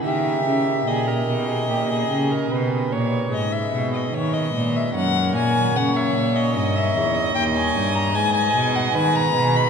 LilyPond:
<<
  \new Staff \with { instrumentName = "Violin" } { \time 4/4 \key gis \minor \tempo 4 = 74 e''4 dis''2~ dis''8 r8 | dis''16 e''8 dis''16 cis''16 dis''8 e''16 fis''8 gis''8 fis''16 e''8 dis''16~ | dis''16 e''8 dis''16 g''16 gis''8 ais''16 gis''16 gis''8 fis''16 gis''16 ais''8 b''16 | }
  \new Staff \with { instrumentName = "Violin" } { \time 4/4 \key gis \minor g'4 gis'16 ais'8 gis'16 g'16 gis'8 ais'16 b'8 cis''8 | r2 ais'4 cis''4 | dis''2. b'4 | }
  \new Staff \with { instrumentName = "Pipe organ" } { \time 4/4 \key gis \minor <dis' g' ais'>1 | <gis dis' gis' b'>2 <ais ais' cis''>2 | <dis' ais' cis''>2 <gis dis' gis' b'>2 | }
  \new Staff \with { instrumentName = "Pipe organ" } { \clef bass \time 4/4 \key gis \minor dis8 cis8 ais,8 b,8 ais,8 cis8 b,8 ais,8 | gis,8 b,8 dis8 ais,8 fis,8 ais,8 cis8 ais,8 | g,8 e,8 dis,8 g,8 gis,8 b,8 dis8 b,8 | }
  \new Staff \with { instrumentName = "Cello" } { \clef bass \time 4/4 \key gis \minor dis8 cis8 ais,8 b,8 ais,8 cis8 b,8 ais,8 | gis,8 b,8 dis8 ais,8 fis,8 ais,8 cis8 ais,8 | g,8 e,8 dis,8 g,8 gis,8 b,8 dis8 b,8 | }
>>